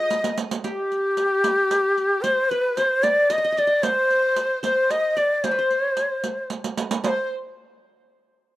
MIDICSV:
0, 0, Header, 1, 5, 480
1, 0, Start_track
1, 0, Tempo, 532387
1, 578, Time_signature, 6, 3, 24, 8
1, 7718, End_track
2, 0, Start_track
2, 0, Title_t, "Ney"
2, 0, Program_c, 0, 77
2, 0, Note_on_c, 0, 75, 98
2, 339, Note_off_c, 0, 75, 0
2, 579, Note_on_c, 0, 67, 92
2, 1999, Note_on_c, 0, 72, 89
2, 2013, Note_off_c, 0, 67, 0
2, 2250, Note_on_c, 0, 71, 78
2, 2263, Note_off_c, 0, 72, 0
2, 2489, Note_on_c, 0, 72, 90
2, 2502, Note_off_c, 0, 71, 0
2, 2734, Note_on_c, 0, 74, 100
2, 2748, Note_off_c, 0, 72, 0
2, 2990, Note_on_c, 0, 75, 94
2, 3003, Note_off_c, 0, 74, 0
2, 3232, Note_on_c, 0, 74, 97
2, 3246, Note_off_c, 0, 75, 0
2, 3455, Note_on_c, 0, 72, 100
2, 3469, Note_off_c, 0, 74, 0
2, 4176, Note_off_c, 0, 72, 0
2, 4181, Note_on_c, 0, 72, 92
2, 4425, Note_on_c, 0, 75, 94
2, 4439, Note_off_c, 0, 72, 0
2, 4664, Note_on_c, 0, 74, 88
2, 4677, Note_off_c, 0, 75, 0
2, 4908, Note_on_c, 0, 72, 86
2, 4921, Note_off_c, 0, 74, 0
2, 5863, Note_off_c, 0, 72, 0
2, 6343, Note_on_c, 0, 74, 69
2, 6383, Note_on_c, 0, 72, 75
2, 6392, Note_off_c, 0, 74, 0
2, 6564, Note_off_c, 0, 72, 0
2, 7718, End_track
3, 0, Start_track
3, 0, Title_t, "Qanun"
3, 0, Program_c, 1, 107
3, 0, Note_on_c, 1, 65, 80
3, 0, Note_on_c, 1, 68, 77
3, 0, Note_on_c, 1, 75, 74
3, 110, Note_off_c, 1, 65, 0
3, 579, Note_on_c, 1, 67, 65
3, 633, Note_off_c, 1, 68, 0
3, 707, Note_off_c, 1, 75, 0
3, 2017, Note_on_c, 1, 72, 87
3, 2061, Note_off_c, 1, 67, 0
3, 2265, Note_on_c, 1, 71, 83
3, 2319, Note_off_c, 1, 72, 0
3, 2506, Note_on_c, 1, 72, 81
3, 2560, Note_off_c, 1, 71, 0
3, 2733, Note_on_c, 1, 74, 81
3, 2974, Note_on_c, 1, 75, 89
3, 3029, Note_off_c, 1, 74, 0
3, 3042, Note_off_c, 1, 75, 0
3, 3046, Note_on_c, 1, 75, 68
3, 3103, Note_off_c, 1, 75, 0
3, 3106, Note_on_c, 1, 75, 75
3, 3173, Note_off_c, 1, 75, 0
3, 3176, Note_on_c, 1, 75, 64
3, 3227, Note_off_c, 1, 75, 0
3, 3231, Note_on_c, 1, 75, 78
3, 3307, Note_off_c, 1, 75, 0
3, 3311, Note_on_c, 1, 75, 69
3, 3450, Note_off_c, 1, 72, 0
3, 3454, Note_on_c, 1, 72, 77
3, 4169, Note_off_c, 1, 75, 0
3, 4170, Note_off_c, 1, 72, 0
3, 4173, Note_on_c, 1, 72, 74
3, 4658, Note_on_c, 1, 74, 78
3, 4906, Note_off_c, 1, 72, 0
3, 4910, Note_on_c, 1, 72, 78
3, 4962, Note_off_c, 1, 72, 0
3, 4971, Note_on_c, 1, 71, 59
3, 5029, Note_off_c, 1, 71, 0
3, 5037, Note_on_c, 1, 72, 71
3, 5546, Note_off_c, 1, 74, 0
3, 5828, Note_off_c, 1, 72, 0
3, 6344, Note_on_c, 1, 72, 81
3, 6564, Note_off_c, 1, 72, 0
3, 7718, End_track
4, 0, Start_track
4, 0, Title_t, "Violin section"
4, 0, Program_c, 2, 48
4, 0, Note_on_c, 2, 75, 87
4, 349, Note_off_c, 2, 75, 0
4, 593, Note_on_c, 2, 67, 84
4, 1989, Note_off_c, 2, 67, 0
4, 2011, Note_on_c, 2, 72, 88
4, 2254, Note_off_c, 2, 72, 0
4, 2267, Note_on_c, 2, 71, 82
4, 2502, Note_off_c, 2, 71, 0
4, 2520, Note_on_c, 2, 72, 81
4, 2748, Note_off_c, 2, 72, 0
4, 2755, Note_on_c, 2, 74, 81
4, 2986, Note_off_c, 2, 74, 0
4, 3006, Note_on_c, 2, 75, 88
4, 3216, Note_off_c, 2, 75, 0
4, 3222, Note_on_c, 2, 74, 82
4, 3459, Note_off_c, 2, 74, 0
4, 3467, Note_on_c, 2, 72, 103
4, 4167, Note_off_c, 2, 72, 0
4, 4178, Note_on_c, 2, 72, 91
4, 4401, Note_off_c, 2, 72, 0
4, 4421, Note_on_c, 2, 75, 77
4, 4659, Note_off_c, 2, 75, 0
4, 4672, Note_on_c, 2, 74, 80
4, 4905, Note_off_c, 2, 74, 0
4, 4909, Note_on_c, 2, 72, 83
4, 5827, Note_off_c, 2, 72, 0
4, 6355, Note_on_c, 2, 72, 96
4, 6570, Note_off_c, 2, 72, 0
4, 7718, End_track
5, 0, Start_track
5, 0, Title_t, "Riq"
5, 95, Note_on_c, 9, 54, 59
5, 185, Note_off_c, 9, 54, 0
5, 217, Note_on_c, 9, 54, 72
5, 307, Note_off_c, 9, 54, 0
5, 339, Note_on_c, 9, 54, 69
5, 429, Note_off_c, 9, 54, 0
5, 463, Note_on_c, 9, 54, 79
5, 553, Note_off_c, 9, 54, 0
5, 579, Note_on_c, 9, 54, 60
5, 669, Note_off_c, 9, 54, 0
5, 826, Note_on_c, 9, 54, 19
5, 917, Note_off_c, 9, 54, 0
5, 1056, Note_on_c, 9, 54, 47
5, 1146, Note_off_c, 9, 54, 0
5, 1299, Note_on_c, 9, 54, 65
5, 1389, Note_off_c, 9, 54, 0
5, 1541, Note_on_c, 9, 54, 61
5, 1631, Note_off_c, 9, 54, 0
5, 1780, Note_on_c, 9, 54, 17
5, 1870, Note_off_c, 9, 54, 0
5, 2018, Note_on_c, 9, 54, 52
5, 2108, Note_off_c, 9, 54, 0
5, 2260, Note_on_c, 9, 54, 15
5, 2350, Note_off_c, 9, 54, 0
5, 2498, Note_on_c, 9, 54, 47
5, 2589, Note_off_c, 9, 54, 0
5, 2737, Note_on_c, 9, 54, 56
5, 2827, Note_off_c, 9, 54, 0
5, 2974, Note_on_c, 9, 54, 47
5, 3064, Note_off_c, 9, 54, 0
5, 3219, Note_on_c, 9, 54, 20
5, 3310, Note_off_c, 9, 54, 0
5, 3455, Note_on_c, 9, 54, 70
5, 3546, Note_off_c, 9, 54, 0
5, 3700, Note_on_c, 9, 54, 17
5, 3791, Note_off_c, 9, 54, 0
5, 3934, Note_on_c, 9, 54, 52
5, 4025, Note_off_c, 9, 54, 0
5, 4180, Note_on_c, 9, 54, 59
5, 4271, Note_off_c, 9, 54, 0
5, 4422, Note_on_c, 9, 54, 53
5, 4512, Note_off_c, 9, 54, 0
5, 4662, Note_on_c, 9, 54, 20
5, 4752, Note_off_c, 9, 54, 0
5, 4903, Note_on_c, 9, 54, 59
5, 4993, Note_off_c, 9, 54, 0
5, 5144, Note_on_c, 9, 54, 19
5, 5234, Note_off_c, 9, 54, 0
5, 5381, Note_on_c, 9, 54, 45
5, 5471, Note_off_c, 9, 54, 0
5, 5623, Note_on_c, 9, 54, 55
5, 5713, Note_off_c, 9, 54, 0
5, 5861, Note_on_c, 9, 54, 61
5, 5951, Note_off_c, 9, 54, 0
5, 5989, Note_on_c, 9, 54, 69
5, 6079, Note_off_c, 9, 54, 0
5, 6108, Note_on_c, 9, 54, 83
5, 6198, Note_off_c, 9, 54, 0
5, 6229, Note_on_c, 9, 54, 90
5, 6319, Note_off_c, 9, 54, 0
5, 6351, Note_on_c, 9, 54, 87
5, 6441, Note_off_c, 9, 54, 0
5, 7718, End_track
0, 0, End_of_file